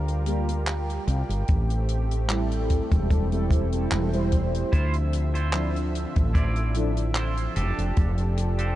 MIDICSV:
0, 0, Header, 1, 7, 480
1, 0, Start_track
1, 0, Tempo, 810811
1, 879, Time_signature, 4, 2, 24, 8
1, 5182, End_track
2, 0, Start_track
2, 0, Title_t, "Clean electric guitar"
2, 0, Program_c, 0, 27
2, 2795, Note_on_c, 0, 64, 105
2, 2798, Note_on_c, 0, 65, 90
2, 2799, Note_on_c, 0, 72, 117
2, 2925, Note_off_c, 0, 64, 0
2, 2926, Note_off_c, 0, 65, 0
2, 2927, Note_off_c, 0, 72, 0
2, 3161, Note_on_c, 0, 64, 79
2, 3166, Note_on_c, 0, 65, 66
2, 3167, Note_on_c, 0, 72, 90
2, 3404, Note_off_c, 0, 64, 0
2, 3405, Note_off_c, 0, 65, 0
2, 3407, Note_off_c, 0, 72, 0
2, 3753, Note_on_c, 0, 64, 91
2, 3757, Note_on_c, 0, 65, 70
2, 3758, Note_on_c, 0, 74, 94
2, 3996, Note_off_c, 0, 64, 0
2, 3997, Note_off_c, 0, 65, 0
2, 3998, Note_off_c, 0, 74, 0
2, 4233, Note_on_c, 0, 64, 92
2, 4238, Note_on_c, 0, 65, 62
2, 4238, Note_on_c, 0, 72, 94
2, 4471, Note_off_c, 0, 64, 0
2, 4473, Note_on_c, 0, 62, 87
2, 4474, Note_off_c, 0, 65, 0
2, 4476, Note_on_c, 0, 67, 80
2, 4477, Note_off_c, 0, 72, 0
2, 4479, Note_on_c, 0, 69, 99
2, 4866, Note_off_c, 0, 62, 0
2, 4868, Note_off_c, 0, 67, 0
2, 4869, Note_off_c, 0, 69, 0
2, 5083, Note_on_c, 0, 62, 84
2, 5085, Note_on_c, 0, 67, 83
2, 5090, Note_on_c, 0, 69, 75
2, 5182, Note_off_c, 0, 62, 0
2, 5182, Note_off_c, 0, 67, 0
2, 5182, Note_off_c, 0, 69, 0
2, 5182, End_track
3, 0, Start_track
3, 0, Title_t, "Analog polysynth"
3, 0, Program_c, 1, 90
3, 154, Note_on_c, 1, 55, 79
3, 157, Note_on_c, 1, 58, 71
3, 160, Note_on_c, 1, 65, 69
3, 163, Note_on_c, 1, 67, 86
3, 295, Note_off_c, 1, 55, 0
3, 296, Note_off_c, 1, 58, 0
3, 298, Note_off_c, 1, 65, 0
3, 300, Note_off_c, 1, 67, 0
3, 1348, Note_on_c, 1, 55, 77
3, 1355, Note_on_c, 1, 60, 72
3, 1361, Note_on_c, 1, 64, 70
3, 1366, Note_on_c, 1, 69, 85
3, 1931, Note_off_c, 1, 55, 0
3, 1934, Note_off_c, 1, 60, 0
3, 1937, Note_off_c, 1, 64, 0
3, 1939, Note_off_c, 1, 69, 0
3, 1963, Note_on_c, 1, 55, 84
3, 1966, Note_on_c, 1, 60, 75
3, 1969, Note_on_c, 1, 64, 75
3, 1972, Note_on_c, 1, 69, 89
3, 2179, Note_off_c, 1, 55, 0
3, 2181, Note_off_c, 1, 60, 0
3, 2182, Note_off_c, 1, 64, 0
3, 2184, Note_off_c, 1, 69, 0
3, 2202, Note_on_c, 1, 55, 87
3, 2206, Note_on_c, 1, 60, 77
3, 2208, Note_on_c, 1, 64, 78
3, 2211, Note_on_c, 1, 69, 94
3, 2414, Note_off_c, 1, 55, 0
3, 2416, Note_off_c, 1, 60, 0
3, 2417, Note_off_c, 1, 64, 0
3, 2418, Note_off_c, 1, 69, 0
3, 2445, Note_on_c, 1, 55, 91
3, 2446, Note_on_c, 1, 60, 83
3, 2450, Note_on_c, 1, 64, 82
3, 2453, Note_on_c, 1, 72, 98
3, 2785, Note_off_c, 1, 55, 0
3, 2786, Note_off_c, 1, 60, 0
3, 2787, Note_off_c, 1, 64, 0
3, 2789, Note_off_c, 1, 72, 0
3, 3273, Note_on_c, 1, 53, 90
3, 3276, Note_on_c, 1, 62, 82
3, 3279, Note_on_c, 1, 64, 81
3, 3281, Note_on_c, 1, 72, 98
3, 3363, Note_off_c, 1, 53, 0
3, 3365, Note_off_c, 1, 62, 0
3, 3366, Note_off_c, 1, 64, 0
3, 3368, Note_off_c, 1, 72, 0
3, 3994, Note_on_c, 1, 53, 78
3, 3998, Note_on_c, 1, 62, 68
3, 3999, Note_on_c, 1, 64, 69
3, 4003, Note_on_c, 1, 69, 82
3, 4135, Note_off_c, 1, 53, 0
3, 4137, Note_off_c, 1, 62, 0
3, 4137, Note_off_c, 1, 64, 0
3, 4140, Note_off_c, 1, 69, 0
3, 5182, End_track
4, 0, Start_track
4, 0, Title_t, "Analog synth pad"
4, 0, Program_c, 2, 89
4, 0, Note_on_c, 2, 55, 83
4, 0, Note_on_c, 2, 65, 74
4, 0, Note_on_c, 2, 67, 90
4, 0, Note_on_c, 2, 70, 90
4, 856, Note_off_c, 2, 70, 0
4, 857, Note_off_c, 2, 55, 0
4, 857, Note_off_c, 2, 65, 0
4, 878, Note_on_c, 2, 60, 73
4, 879, Note_on_c, 2, 57, 82
4, 2774, Note_off_c, 2, 67, 0
4, 2780, Note_off_c, 2, 57, 0
4, 2796, Note_on_c, 2, 50, 81
4, 2796, Note_on_c, 2, 76, 72
4, 2797, Note_on_c, 2, 53, 86
4, 4455, Note_off_c, 2, 60, 0
4, 4461, Note_off_c, 2, 50, 0
4, 4461, Note_off_c, 2, 53, 0
4, 4461, Note_off_c, 2, 76, 0
4, 4477, Note_on_c, 2, 53, 81
4, 4477, Note_on_c, 2, 69, 94
4, 4478, Note_on_c, 2, 62, 74
4, 4478, Note_on_c, 2, 67, 76
4, 5182, Note_off_c, 2, 53, 0
4, 5182, Note_off_c, 2, 62, 0
4, 5182, Note_off_c, 2, 67, 0
4, 5182, Note_off_c, 2, 69, 0
4, 5182, End_track
5, 0, Start_track
5, 0, Title_t, "Fretless electric bass"
5, 0, Program_c, 3, 35
5, 0, Note_on_c, 3, 38, 99
5, 578, Note_off_c, 3, 38, 0
5, 636, Note_on_c, 3, 36, 96
5, 722, Note_off_c, 3, 36, 0
5, 764, Note_on_c, 3, 31, 88
5, 840, Note_off_c, 3, 31, 0
5, 881, Note_on_c, 3, 33, 98
5, 1659, Note_off_c, 3, 33, 0
5, 1727, Note_on_c, 3, 28, 95
5, 2313, Note_off_c, 3, 28, 0
5, 2317, Note_on_c, 3, 28, 77
5, 2738, Note_off_c, 3, 28, 0
5, 2798, Note_on_c, 3, 38, 96
5, 3578, Note_off_c, 3, 38, 0
5, 3649, Note_on_c, 3, 33, 98
5, 4420, Note_off_c, 3, 33, 0
5, 4477, Note_on_c, 3, 29, 94
5, 4563, Note_off_c, 3, 29, 0
5, 4606, Note_on_c, 3, 29, 86
5, 4681, Note_off_c, 3, 29, 0
5, 4719, Note_on_c, 3, 29, 95
5, 5182, Note_off_c, 3, 29, 0
5, 5182, End_track
6, 0, Start_track
6, 0, Title_t, "Muted clean electric guitar strokes"
6, 3034, Note_on_c, 9, 29, 32
6, 3093, Note_off_c, 9, 29, 0
6, 3641, Note_on_c, 9, 29, 31
6, 3701, Note_off_c, 9, 29, 0
6, 4956, Note_on_c, 9, 29, 33
6, 5015, Note_off_c, 9, 29, 0
6, 5182, End_track
7, 0, Start_track
7, 0, Title_t, "Drums"
7, 48, Note_on_c, 9, 42, 42
7, 107, Note_off_c, 9, 42, 0
7, 154, Note_on_c, 9, 42, 89
7, 213, Note_off_c, 9, 42, 0
7, 287, Note_on_c, 9, 42, 68
7, 347, Note_off_c, 9, 42, 0
7, 398, Note_on_c, 9, 39, 117
7, 401, Note_on_c, 9, 42, 71
7, 457, Note_off_c, 9, 39, 0
7, 460, Note_off_c, 9, 42, 0
7, 531, Note_on_c, 9, 42, 44
7, 590, Note_off_c, 9, 42, 0
7, 637, Note_on_c, 9, 42, 89
7, 696, Note_off_c, 9, 42, 0
7, 771, Note_on_c, 9, 42, 70
7, 830, Note_off_c, 9, 42, 0
7, 875, Note_on_c, 9, 42, 60
7, 881, Note_on_c, 9, 36, 118
7, 934, Note_off_c, 9, 42, 0
7, 941, Note_off_c, 9, 36, 0
7, 1006, Note_on_c, 9, 42, 49
7, 1066, Note_off_c, 9, 42, 0
7, 1116, Note_on_c, 9, 42, 80
7, 1176, Note_off_c, 9, 42, 0
7, 1250, Note_on_c, 9, 42, 59
7, 1309, Note_off_c, 9, 42, 0
7, 1355, Note_on_c, 9, 42, 59
7, 1358, Note_on_c, 9, 39, 127
7, 1415, Note_off_c, 9, 42, 0
7, 1418, Note_off_c, 9, 39, 0
7, 1488, Note_on_c, 9, 42, 44
7, 1548, Note_off_c, 9, 42, 0
7, 1597, Note_on_c, 9, 42, 99
7, 1600, Note_on_c, 9, 36, 66
7, 1656, Note_off_c, 9, 42, 0
7, 1659, Note_off_c, 9, 36, 0
7, 1725, Note_on_c, 9, 42, 64
7, 1726, Note_on_c, 9, 36, 107
7, 1784, Note_off_c, 9, 42, 0
7, 1785, Note_off_c, 9, 36, 0
7, 1838, Note_on_c, 9, 36, 109
7, 1838, Note_on_c, 9, 42, 64
7, 1897, Note_off_c, 9, 36, 0
7, 1897, Note_off_c, 9, 42, 0
7, 1965, Note_on_c, 9, 42, 46
7, 2024, Note_off_c, 9, 42, 0
7, 2075, Note_on_c, 9, 36, 110
7, 2079, Note_on_c, 9, 42, 95
7, 2134, Note_off_c, 9, 36, 0
7, 2139, Note_off_c, 9, 42, 0
7, 2204, Note_on_c, 9, 42, 60
7, 2264, Note_off_c, 9, 42, 0
7, 2318, Note_on_c, 9, 39, 127
7, 2318, Note_on_c, 9, 42, 64
7, 2377, Note_off_c, 9, 39, 0
7, 2377, Note_off_c, 9, 42, 0
7, 2446, Note_on_c, 9, 42, 42
7, 2505, Note_off_c, 9, 42, 0
7, 2556, Note_on_c, 9, 42, 87
7, 2561, Note_on_c, 9, 36, 61
7, 2615, Note_off_c, 9, 42, 0
7, 2620, Note_off_c, 9, 36, 0
7, 2690, Note_on_c, 9, 42, 66
7, 2750, Note_off_c, 9, 42, 0
7, 2799, Note_on_c, 9, 36, 109
7, 2799, Note_on_c, 9, 42, 66
7, 2858, Note_off_c, 9, 36, 0
7, 2859, Note_off_c, 9, 42, 0
7, 2922, Note_on_c, 9, 42, 43
7, 2981, Note_off_c, 9, 42, 0
7, 3037, Note_on_c, 9, 42, 90
7, 3096, Note_off_c, 9, 42, 0
7, 3167, Note_on_c, 9, 42, 56
7, 3226, Note_off_c, 9, 42, 0
7, 3274, Note_on_c, 9, 39, 112
7, 3275, Note_on_c, 9, 42, 67
7, 3333, Note_off_c, 9, 39, 0
7, 3334, Note_off_c, 9, 42, 0
7, 3410, Note_on_c, 9, 42, 44
7, 3469, Note_off_c, 9, 42, 0
7, 3523, Note_on_c, 9, 42, 96
7, 3582, Note_off_c, 9, 42, 0
7, 3646, Note_on_c, 9, 42, 58
7, 3649, Note_on_c, 9, 36, 105
7, 3705, Note_off_c, 9, 42, 0
7, 3709, Note_off_c, 9, 36, 0
7, 3759, Note_on_c, 9, 36, 104
7, 3759, Note_on_c, 9, 42, 63
7, 3818, Note_off_c, 9, 36, 0
7, 3818, Note_off_c, 9, 42, 0
7, 3882, Note_on_c, 9, 42, 41
7, 3941, Note_off_c, 9, 42, 0
7, 3992, Note_on_c, 9, 42, 91
7, 4052, Note_off_c, 9, 42, 0
7, 4125, Note_on_c, 9, 42, 65
7, 4184, Note_off_c, 9, 42, 0
7, 4233, Note_on_c, 9, 39, 110
7, 4237, Note_on_c, 9, 42, 67
7, 4292, Note_off_c, 9, 39, 0
7, 4296, Note_off_c, 9, 42, 0
7, 4364, Note_on_c, 9, 42, 46
7, 4424, Note_off_c, 9, 42, 0
7, 4475, Note_on_c, 9, 42, 96
7, 4534, Note_off_c, 9, 42, 0
7, 4609, Note_on_c, 9, 42, 59
7, 4668, Note_off_c, 9, 42, 0
7, 4715, Note_on_c, 9, 42, 55
7, 4720, Note_on_c, 9, 36, 112
7, 4774, Note_off_c, 9, 42, 0
7, 4779, Note_off_c, 9, 36, 0
7, 4840, Note_on_c, 9, 42, 42
7, 4899, Note_off_c, 9, 42, 0
7, 4958, Note_on_c, 9, 42, 93
7, 5018, Note_off_c, 9, 42, 0
7, 5083, Note_on_c, 9, 42, 65
7, 5142, Note_off_c, 9, 42, 0
7, 5182, End_track
0, 0, End_of_file